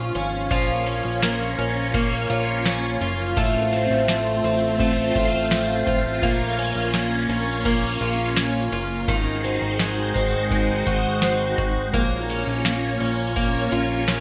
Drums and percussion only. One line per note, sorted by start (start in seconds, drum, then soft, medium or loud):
0.15 closed hi-hat soft
0.51 kick loud
0.51 crash loud
0.51 ride medium
0.87 ride soft
1.22 snare loud
1.22 ride medium
1.22 tambourine medium
1.58 ride soft
1.94 kick medium
1.94 ride medium
2.30 ride soft
2.65 snare loud
2.65 ride medium
2.65 tambourine medium
3.01 ride soft
3.37 kick loud
3.37 ride medium
3.72 ride soft
4.08 snare loud
4.08 ride medium
4.08 tambourine medium
4.44 ride soft
4.80 kick medium
4.80 ride medium
5.16 kick medium
5.16 ride soft
5.51 snare loud
5.51 ride medium
5.51 tambourine medium
5.86 kick medium
5.86 ride soft
6.22 kick loud
6.22 ride medium
6.57 ride soft
6.93 snare loud
6.93 ride medium
6.93 tambourine medium
7.29 ride soft
7.65 kick medium
7.65 ride medium
8.01 ride soft
8.36 snare loud
8.36 ride medium
8.36 tambourine medium
8.72 ride soft
9.08 kick loud
9.08 ride medium
9.43 ride soft
9.79 snare loud
9.79 ride medium
9.79 tambourine medium
10.15 kick medium
10.15 ride soft
10.51 kick medium
10.51 ride medium
10.87 kick medium
10.87 ride soft
11.22 snare loud
11.22 ride medium
11.22 tambourine medium
11.58 kick medium
11.58 ride soft
11.94 kick loud
11.94 ride medium
12.29 ride soft
12.65 snare loud
12.65 ride medium
12.65 tambourine medium
13.01 ride soft
13.36 kick medium
13.36 ride medium
13.72 ride soft
14.08 snare loud
14.08 ride medium
14.08 tambourine medium